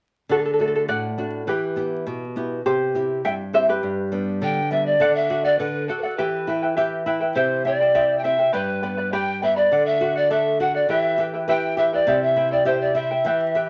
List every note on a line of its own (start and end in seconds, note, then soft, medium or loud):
0.29 0.87 D3 medium
0.29 0.38 F#4 medium
0.29 0.38 A4 medium
0.39 0.44 A4 soft
0.45 0.52 A4 soft
0.54 0.60 A4 soft
0.59 1.06 A3 soft
0.59 1.06 D4 soft
0.59 1.07 F#4 soft
0.59 0.66 A4 medium
0.68 0.74 A4 soft
0.76 0.83 A4 medium
0.88 1.46 A2 medium
0.88 1.44 D5 medium
0.88 1.49 F#5 medium
1.18 1.42 A3 soft
1.18 1.42 D4 soft
1.18 1.42 F#4 soft
1.47 2.05 E3 medium
1.47 2.32 G4 soft
1.47 2.32 B4 medium
1.76 2.24 B3 soft
1.76 2.24 E4 soft
1.76 2.24 G4 soft
2.07 2.64 B2 medium
2.36 2.59 B3 soft
2.36 2.60 E4 soft
2.36 2.60 G4 soft
2.66 3.23 C3 medium
2.66 3.20 G4 medium
2.66 3.24 C5 medium
2.95 3.42 C4 soft
2.95 3.42 E4 soft
2.95 3.42 G4 soft
3.25 3.81 G2 medium
3.25 3.33 E5 medium
3.25 3.33 G5 medium
3.53 3.77 C4 soft
3.53 3.77 E4 soft
3.53 3.78 G4 soft
3.53 3.68 C5 medium
3.53 3.69 E5 medium
3.69 4.67 G4 soft
3.69 4.68 B4 medium
3.83 4.40 G2 medium
4.12 4.59 G3 soft
4.12 4.59 B3 soft
4.12 4.59 D4 soft
4.42 4.99 D3 medium
4.42 4.73 G5 medium
4.71 4.95 G3 soft
4.71 4.95 B3 soft
4.71 4.95 D4 soft
4.71 4.87 E5 medium
4.85 5.14 D5 medium
5.00 5.58 D3 medium
5.00 5.28 A4 medium
5.00 5.29 D5 medium
5.00 5.30 F#5 medium
5.14 5.42 E5 medium
5.29 5.58 F#4 soft
5.29 5.44 A4 soft
5.29 5.45 D5 soft
5.29 5.43 F#5 soft
5.44 5.57 D5 medium
5.44 5.58 D5 soft
5.44 5.59 F#5 soft
5.58 5.88 D3 medium
5.58 5.87 A4 medium
5.58 5.86 B4 medium
5.58 5.88 D5 medium
5.58 5.88 F#5 medium
5.88 6.18 F#4 soft
5.88 5.97 A4 medium
5.88 6.03 A4 medium
5.88 6.03 D5 medium
5.88 6.02 F#5 medium
5.98 6.18 A4 medium
5.98 6.03 B4 soft
6.03 6.18 D5 soft
6.03 6.18 F#5 medium
6.16 7.32 E3 medium
6.16 6.48 E4 medium
6.16 6.47 G4 medium
6.16 6.76 B4 medium
6.16 6.48 B4 medium
6.16 6.47 E5 medium
6.16 6.48 G5 medium
6.47 6.76 E4 soft
6.47 6.63 E4 medium
6.47 6.62 B4 medium
6.47 6.62 E5 soft
6.47 6.61 G5 medium
6.62 6.76 E4 soft
6.62 6.76 B4 soft
6.62 6.76 G5 soft
6.77 7.06 E4 medium
6.77 7.06 G4 medium
6.77 7.06 B4 medium
6.77 7.05 E5 medium
6.77 7.06 G5 medium
7.06 7.35 E4 soft
7.06 7.21 E4 medium
7.06 7.20 B4 medium
7.06 7.21 E5 medium
7.06 7.19 G5 medium
7.21 7.35 E4 soft
7.21 7.36 B4 soft
7.21 7.35 G5 soft
7.34 8.50 C3 medium
7.34 7.65 E4 medium
7.34 7.65 G4 medium
7.34 7.62 C5 medium
7.34 7.65 C5 medium
7.34 7.64 E5 medium
7.34 7.65 G5 medium
7.65 7.93 C4 soft
7.65 7.80 E4 medium
7.65 7.80 C5 soft
7.65 8.19 D5 medium
7.65 7.80 E5 medium
7.65 7.79 G5 medium
7.80 7.94 E4 soft
7.80 7.94 C5 soft
7.80 7.94 G5 medium
7.94 8.23 E4 medium
7.94 8.24 G4 medium
7.94 8.23 G4 medium
7.94 8.24 C5 medium
7.94 8.23 E5 medium
7.94 8.24 G5 medium
8.18 8.25 G5 medium
8.24 8.53 C4 soft
8.24 8.39 E4 medium
8.24 8.38 C5 medium
8.24 8.54 E5 medium
8.24 8.39 E5 medium
8.24 8.37 G5 medium
8.39 8.53 E4 soft
8.39 8.53 C5 soft
8.39 8.52 G5 soft
8.53 9.68 G2 medium
8.53 8.82 G4 medium
8.53 8.82 B4 medium
8.53 9.13 B4 medium
8.53 8.82 D5 medium
8.53 8.81 G5 medium
8.53 8.82 B5 medium
8.82 9.12 B3 soft
8.82 8.98 B4 medium
8.82 8.97 D5 medium
8.82 8.97 G5 soft
8.82 8.96 B5 soft
8.98 9.12 B4 soft
8.98 9.12 D5 soft
8.98 9.12 B5 soft
9.12 9.42 G4 medium
9.12 9.41 G4 medium
9.12 9.41 B4 medium
9.12 9.42 D5 medium
9.12 9.44 G5 medium
9.12 9.41 G5 medium
9.12 9.42 B5 medium
9.42 9.71 B3 soft
9.42 9.57 B4 medium
9.42 9.56 D5 medium
9.42 9.57 E5 medium
9.42 9.57 G5 soft
9.42 9.55 B5 medium
9.56 9.72 B4 soft
9.56 9.85 D5 medium
9.56 9.71 D5 soft
9.56 9.71 B5 medium
9.71 10.86 D3 medium
9.71 9.99 A4 medium
9.71 10.00 D5 medium
9.71 10.01 F#5 medium
9.85 10.13 E5 medium
10.00 10.29 F#4 soft
10.00 10.15 A4 soft
10.00 10.16 D5 soft
10.00 10.14 F#5 medium
10.15 10.32 D5 medium
10.15 10.30 D5 soft
10.15 10.30 F#5 soft
10.30 10.59 A4 medium
10.30 10.59 D5 medium
10.30 10.62 E5 medium
10.30 10.60 F#5 medium
10.60 10.89 F#4 soft
10.60 10.74 A4 soft
10.60 10.75 D5 medium
10.60 10.75 F#5 medium
10.60 10.73 F#5 soft
10.74 10.89 D5 medium
10.74 10.90 D5 soft
10.74 10.89 F#5 soft
10.89 12.04 E3 medium
10.89 11.18 E4 medium
10.89 11.19 G4 medium
10.89 11.19 B4 medium
10.89 11.17 E5 medium
10.89 11.22 E5 medium
10.89 11.19 G5 medium
11.18 11.34 E4 medium
11.18 11.47 G4 soft
11.18 11.33 B4 medium
11.18 11.33 E5 soft
11.18 11.32 G5 medium
11.34 11.48 E4 soft
11.34 11.48 B4 soft
11.34 11.48 G5 soft
11.48 11.77 E4 medium
11.48 11.78 G4 medium
11.48 11.76 B4 medium
11.48 11.78 B4 medium
11.48 11.77 E5 medium
11.48 11.77 G5 loud
11.48 11.78 G5 medium
11.77 11.93 E4 medium
11.77 12.06 G4 soft
11.77 11.92 B4 medium
11.77 11.91 E5 medium
11.77 11.93 E5 medium
11.77 11.92 G5 medium
11.93 12.07 E4 soft
11.93 12.08 B4 soft
11.93 12.20 D5 medium
11.93 12.07 G5 medium
12.07 13.22 C3 medium
12.07 12.36 E4 medium
12.07 12.37 G4 medium
12.07 12.36 C5 medium
12.07 12.35 E5 medium
12.07 12.37 G5 medium
12.22 12.50 E5 medium
12.36 12.65 E4 medium
12.36 12.51 E4 medium
12.36 12.51 C5 medium
12.36 12.51 E5 soft
12.36 12.50 G5 medium
12.51 12.65 E4 soft
12.51 12.65 C5 soft
12.51 12.65 D5 medium
12.51 12.66 G5 soft
12.65 12.95 E4 medium
12.65 12.94 G4 medium
12.65 12.96 G4 medium
12.65 12.80 C5 medium
12.65 12.95 C5 medium
12.65 12.94 E5 medium
12.65 12.95 G5 medium
12.81 12.96 D5 medium
12.95 13.24 E4 medium
12.95 13.11 E4 soft
12.95 13.10 C5 medium
12.95 13.69 E5 medium
12.95 13.10 E5 medium
12.95 13.10 G5 medium
13.11 13.25 E4 soft
13.11 13.26 C5 soft
13.11 13.25 G5 medium
13.25 13.69 E3 medium
13.25 13.54 E4 medium
13.25 13.55 G4 medium
13.25 13.55 B4 medium
13.25 13.54 E5 medium
13.25 13.56 G5 medium
13.55 13.69 E4 soft
13.55 13.69 G4 soft
13.55 13.69 B4 medium
13.55 13.69 E5 medium
13.55 13.68 G5 medium